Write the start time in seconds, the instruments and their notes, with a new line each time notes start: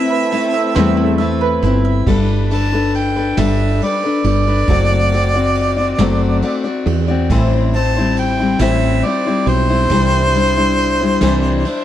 Already playing: string section A3 C4, steel-string acoustic guitar C4 E4 B4, mandolin C4 E4 E5, harmonica E5
0.10 mandolin B4
0.32 steel-string acoustic guitar A3 C4 E4 B4, mandolin E4, closed hi-hat
0.54 mandolin E5
0.75 fretless electric bass E2, steel-string acoustic guitar G3 A3 C4 E4 B4, mandolin C4 E5, snare, closed hi-hat
0.97 mandolin E4
1.18 steel-string acoustic guitar A3 C4 E4 B4, mandolin E5, closed hi-hat
1.41 mandolin B4
1.63 fretless electric bass G1, steel-string acoustic guitar C4 E4 B4, mandolin E4, closed hi-hat
1.85 mandolin E5
2.06 fretless electric bass G1, steel-string acoustic guitar G3 D4 A4 B4, kick, ride
2.51 steel-string acoustic guitar G3 D4 A4 B4, harmonica A5, ride
2.73 steel-string acoustic guitar D4 A4 B4
2.94 harmonica G5, ride
3.16 steel-string acoustic guitar D4 A4 B4
3.37 fretless electric bass G1, steel-string acoustic guitar G3 D4 A4 B4, harmonica E5, snare, ride
3.82 steel-string acoustic guitar G3 D4 A4 B4, harmonica D5, ride
4.04 steel-string acoustic guitar D4 A4 B4
4.24 fretless electric bass G1, harmonica D5, ride
4.48 steel-string acoustic guitar D4 A4 B4
4.68 fretless electric bass F#1, steel-string acoustic guitar F#3 A3 C4 F#4 D5, kick, ride
5.12 steel-string acoustic guitar A3 C4 F#4 D5, ride
5.34 steel-string acoustic guitar C4 F#4 D5
5.55 ride
5.77 steel-string acoustic guitar C4 F#4 D5
5.98 fretless electric bass F#1, steel-string acoustic guitar F#3 A3 C4 F#4 D5, snare, ride
6.42 steel-string acoustic guitar A3 C4 F#4 D5, ride
6.64 steel-string acoustic guitar C4 F#4 D5
6.86 fretless electric bass E2, ride
7.08 steel-string acoustic guitar C4 F#4 D5
7.30 fretless electric bass A1, steel-string acoustic guitar A2 E3 G3 C4 E4 C5, kick, ride
7.73 steel-string acoustic guitar G3 C4 E4 C5, harmonica A5, ride
7.97 steel-string acoustic guitar G3 C4 E4 C5
8.16 harmonica G5, ride
8.39 steel-string acoustic guitar G3 C4 E4 C5
8.59 fretless electric bass A1, steel-string acoustic guitar A2 E3 G3 C4 E4 C5, harmonica E5, snare, ride
9.03 steel-string acoustic guitar G3 C4 E4, harmonica D5, ride
9.07 steel-string acoustic guitar C5
9.26 steel-string acoustic guitar G3 C4 E4 C5
9.46 fretless electric bass B1, harmonica C5, ride
9.69 steel-string acoustic guitar G3 C4 E4 C5
9.90 fretless electric bass C2, steel-string acoustic guitar C3 E3 G3 D4 E4 C5, kick, ride
10.34 steel-string acoustic guitar G3 D4 E4 C5, ride
10.56 steel-string acoustic guitar G3 D4 E4 C5
10.78 ride
11.01 steel-string acoustic guitar G3 D4 E4 C5
11.21 fretless electric bass C2, steel-string acoustic guitar C3 E3 G3 D4 E4 C5, snare, ride
11.65 steel-string acoustic guitar G3 D4 E4 C5, ride